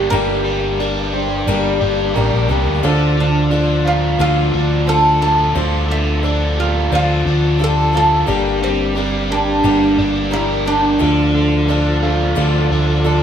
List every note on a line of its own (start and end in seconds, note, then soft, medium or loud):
0.00 0.10 G3 medium
0.00 0.11 G3 soft
0.00 0.10 A#3 medium
0.00 0.11 A#3 soft
0.00 0.10 D4 medium
0.00 0.12 D4 medium
0.00 0.79 D4 medium
0.00 0.11 G4 medium
0.00 1.13 A#4 medium
0.10 1.44 G1 medium
0.10 0.79 G2 medium
0.10 0.79 D3 medium
0.10 2.81 G3 medium
0.10 0.79 G3 medium
0.10 2.81 A#3 medium
0.10 0.79 A#3 medium
0.10 0.64 D4 medium
0.10 2.81 D4 medium
0.10 0.81 D4 medium
0.10 0.65 G4 medium
0.10 0.80 G4 medium
0.10 1.09 A#4 medium
0.44 1.47 G3 medium
0.79 1.47 G3 medium
0.79 1.47 A#3 medium
0.79 1.06 D4 medium
0.79 1.48 D4 medium
0.79 1.06 G4 medium
0.79 1.48 G4 medium
0.79 1.06 A#4 medium
1.13 1.40 D4 medium
1.13 2.48 G4 medium
1.13 1.40 G4 medium
1.13 1.40 C5 medium
1.47 1.78 G1 medium
1.47 2.16 G2 medium
1.47 2.16 D3 medium
1.47 2.14 G3 medium
1.47 2.15 A#3 medium
1.47 2.00 D4 medium
1.47 2.17 D4 medium
1.47 2.00 G4 medium
1.47 2.16 G4 loud
1.47 2.01 A#4 medium
1.81 2.13 G1 medium
1.81 3.50 D4 medium
2.14 2.31 A1 medium
2.14 2.50 G3 medium
2.14 2.50 A#3 medium
2.14 2.68 D4 medium
2.14 2.48 D4 medium
2.14 2.68 G4 medium
2.14 2.48 G4 medium
2.14 2.83 A#4 medium
2.14 2.69 A#4 medium
2.33 2.48 A#1 medium
2.49 2.65 C2 medium
2.49 2.83 G3 soft
2.49 2.83 A#3 medium
2.49 2.82 D4 medium
2.49 2.83 G4 medium
2.67 2.82 D2 medium
2.83 4.16 D2 medium
2.83 4.19 D3 medium
2.83 5.53 F3 medium
2.83 3.50 F3 medium
2.83 5.53 A3 medium
2.83 3.36 D4 loud
2.83 5.53 D4 medium
2.83 3.51 D4 medium
2.83 5.53 F4 medium
2.83 3.51 F4 medium
2.83 3.37 F4 loud
2.83 3.37 A4 loud
2.83 3.52 A4 medium
3.17 4.18 D3 medium
3.17 3.83 D4 medium
3.50 4.19 F3 medium
3.50 3.77 D4 medium
3.50 4.20 D4 medium
3.50 3.78 F4 medium
3.50 4.19 F4 medium
3.50 3.78 A4 medium
3.50 4.20 A4 medium
3.85 4.12 D4 medium
3.85 5.20 F4 medium
3.85 4.12 F4 medium
3.85 4.20 F4 medium
3.85 4.12 C5 medium
4.19 4.50 D2 medium
4.19 4.87 D3 medium
4.19 4.86 F3 medium
4.19 4.72 D4 medium
4.19 4.88 D4 medium
4.19 4.72 F4 medium
4.19 4.87 F4 medium
4.19 4.84 F4 medium
4.19 4.73 A4 medium
4.19 4.88 A4 medium
4.54 5.52 D2 medium
4.54 6.24 D4 medium
4.86 5.21 F3 medium
4.86 5.40 D4 medium
4.86 5.22 D4 medium
4.86 5.40 F4 medium
4.86 5.22 F4 medium
4.86 5.21 A4 loud
4.86 5.21 A4 medium
4.86 5.40 C5 medium
5.22 5.55 D4 soft
5.22 5.56 F4 medium
5.22 5.56 A4 medium
5.22 5.54 A4 medium
5.54 6.88 D2 loud
5.54 6.24 D3 medium
5.54 6.22 F3 medium
5.54 8.26 F3 medium
5.54 8.26 A3 medium
5.54 6.08 D4 medium
5.54 6.24 D4 medium
5.54 8.26 D4 medium
5.54 6.08 F4 medium
5.54 8.26 A4 medium
5.54 6.25 A4 medium
5.54 6.08 C5 loud
5.89 6.91 D3 medium
5.89 6.60 E4 medium
6.22 6.91 F3 medium
6.22 6.50 D4 medium
6.22 6.92 D4 medium
6.22 6.50 F4 medium
6.22 6.50 A4 medium
6.22 6.92 A4 medium
6.56 6.83 D4 medium
6.56 6.84 F4 medium
6.56 7.93 F4 medium
6.56 6.91 F4 medium
6.56 6.84 G4 medium
6.90 7.23 D2 medium
6.90 7.60 D3 medium
6.90 7.58 F3 medium
6.90 7.44 D4 medium
6.90 7.59 D4 medium
6.90 7.44 F4 medium
6.90 7.60 F4 medium
6.90 7.60 A4 medium
6.90 7.45 C5 medium
6.95 7.63 F4 medium
7.25 8.24 D2 medium
7.25 8.96 D4 medium
7.58 7.94 F3 medium
7.58 8.12 D4 medium
7.58 7.94 D4 medium
7.58 8.12 F4 medium
7.58 7.93 F4 medium
7.58 8.13 G4 medium
7.58 7.92 A4 medium
7.64 7.94 A4 loud
7.93 8.27 D4 soft
7.93 8.28 F4 medium
7.93 8.27 A4 medium
7.97 8.27 A4 medium
8.26 9.60 G1 medium
8.26 8.95 G2 medium
8.26 8.96 D3 medium
8.26 8.94 G3 medium
8.26 10.98 G3 medium
8.26 8.96 A#3 medium
8.26 10.99 A#3 medium
8.26 8.80 D4 medium
8.26 8.97 D4 medium
8.26 10.98 D4 medium
8.26 8.80 G4 medium
8.26 8.96 G4 medium
8.26 10.99 G4 medium
8.26 8.81 A#4 loud
8.63 9.63 G3 medium
8.63 9.33 C4 medium
8.94 9.63 G3 medium
8.94 9.64 A#3 medium
8.94 9.22 D4 medium
8.94 9.64 D4 medium
8.94 9.22 G4 medium
8.94 9.64 G4 medium
8.94 9.22 A#4 medium
9.29 9.56 D4 medium
9.29 9.95 D4 medium
9.29 9.56 G4 medium
9.29 10.65 G4 medium
9.29 9.57 A#4 medium
9.64 9.95 G1 medium
9.64 10.32 G2 medium
9.64 10.32 D3 medium
9.64 10.30 G3 medium
9.64 10.31 A#3 medium
9.64 10.17 D4 medium
9.64 10.32 D4 medium
9.64 10.17 G4 medium
9.64 10.32 G4 medium
9.64 10.18 A#4 medium
9.98 10.97 G1 medium
9.98 11.01 D4 medium
10.31 10.66 G3 medium
10.31 10.66 A#3 medium
10.31 10.85 D4 medium
10.31 10.66 D4 medium
10.31 10.42 E4 medium
10.31 10.85 G4 medium
10.31 10.65 G4 medium
10.31 11.01 A#4 medium
10.66 10.99 G3 soft
10.66 11.00 A#3 medium
10.66 10.99 D4 medium
10.66 13.02 D4 medium
10.66 11.00 G4 medium
10.99 12.33 D2 loud
10.99 11.68 D3 medium
10.99 11.67 F3 medium
10.99 13.23 F3 medium
10.99 13.23 A3 medium
10.99 11.53 D4 medium
10.99 11.68 D4 medium
10.99 13.23 D4 medium
10.99 11.53 F4 medium
10.99 11.69 F4 medium
10.99 11.53 A4 loud
10.99 11.69 A4 medium
11.03 13.23 F4 medium
11.36 12.37 D3 medium
11.67 12.35 F3 medium
11.67 11.95 D4 medium
11.67 12.35 D4 medium
11.67 11.95 F4 medium
11.67 12.35 F4 medium
11.67 11.95 A4 loud
11.67 12.36 A4 medium
12.02 12.29 D4 medium
12.02 12.29 F4 medium
12.02 13.23 F4 medium
12.02 12.29 A4 medium
12.35 12.68 D2 medium
12.35 13.04 D3 medium
12.35 13.03 F3 medium
12.35 12.89 D4 medium
12.35 13.04 D4 medium
12.35 12.90 F4 medium
12.35 13.05 F4 medium
12.35 12.90 A4 medium
12.35 13.05 A4 medium
12.71 13.23 D2 medium
12.71 13.23 D4 medium
13.04 13.23 F3 medium
13.04 13.23 D4 medium
13.04 13.23 F4 medium
13.04 13.23 A4 medium